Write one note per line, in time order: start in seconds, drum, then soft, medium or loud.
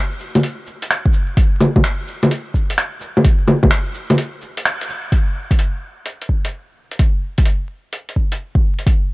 0.20 cabasa medium
0.35 closed hi-hat soft
0.35 low bongo medium
0.43 closed hi-hat soft
0.67 cabasa medium
0.82 closed hi-hat soft
0.91 finger snap loud
0.91 closed hi-hat soft
1.06 kick loud
1.13 cabasa medium
1.37 kick loud
1.37 closed hi-hat medium
1.60 low bongo medium
1.60 cabasa medium
1.76 kick loud
1.76 low bongo medium
1.84 finger snap loud
1.84 closed hi-hat medium
2.08 cabasa medium
2.23 closed hi-hat soft
2.23 low bongo medium
2.31 closed hi-hat medium
2.54 kick medium
2.54 cabasa medium
2.70 closed hi-hat medium
2.78 finger snap medium
2.78 closed hi-hat medium
3.01 cabasa medium
3.17 low bongo medium
3.25 kick loud
3.25 closed hi-hat medium
3.48 low bongo medium
3.48 cabasa medium
3.63 kick loud
3.63 low bongo medium
3.71 finger snap loud
3.71 closed hi-hat medium
3.94 cabasa medium
4.10 closed hi-hat soft
4.10 low bongo medium
4.18 closed hi-hat medium
4.42 cabasa medium
4.57 closed hi-hat medium
4.65 finger snap medium
4.65 closed hi-hat medium
4.81 closed hi-hat soft
4.89 cabasa medium
5.12 kick loud
5.12 closed hi-hat soft
5.51 kick medium
5.51 closed hi-hat soft
5.59 closed hi-hat medium
6.06 closed hi-hat medium
6.22 closed hi-hat soft
6.29 kick medium
6.45 closed hi-hat soft
6.91 closed hi-hat soft
6.99 kick loud
6.99 closed hi-hat medium
7.38 kick loud
7.38 closed hi-hat soft
7.46 closed hi-hat medium
7.93 closed hi-hat medium
8.09 closed hi-hat soft
8.16 kick medium
8.32 closed hi-hat soft
8.55 kick loud
8.79 closed hi-hat soft
8.87 kick loud
8.87 closed hi-hat soft